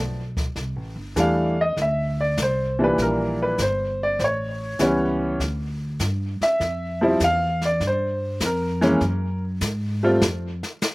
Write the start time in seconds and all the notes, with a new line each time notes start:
Already playing: B1
0.37 kick, snare
0.55 C2, brush sweep, kick, snare
0.76 A1
0.96 G1
1.16 E2 E3 G3 A3 D4 F5, kick, snare, hi-hat pedal
1.61 D#5
1.77 D2, brush sweep, kick, snare
1.82 E5
2.21 D5
2.37 C2, kick, snare, hi-hat pedal
2.43 C5
2.79 A#2 E3 G3 D4
2.84 B4
2.98 A#1, brush sweep, kick, snare
3.02 A#4
3.42 B4
3.58 G1 C5, kick, snare, hi-hat pedal
4.03 D5
4.19 A1 C5, brush sweep, kick, snare
4.24 C#5
4.79 C#2 E3 G3 B3 C#4, kick, snare, hi-hat pedal
5.40 D2, brush sweep, kick, snare
5.99 G2, kick, snare, hi-hat pedal
6.40 E5, muted upright bass stroke, snare
6.60 F2, brush sweep, kick, snare
7.01 F3 G3 C4 E4
7.20 E2, kick, snare, hi-hat pedal
7.24 F5
7.62 D5, snare
7.80 G2, brush sweep, kick, snare
7.87 C5
8.40 F2, kick, snare, hi-hat pedal
8.46 A#4
8.81 E3 G#3 A#3 C#4, snare
9.01 F#2, brush sweep, kick, snare
9.61 G#2, kick, snare, hi-hat pedal
10.03 G3 A3 C4 F4
10.21 F2, snare
10.63 snare
10.82 snare, hi-hat pedal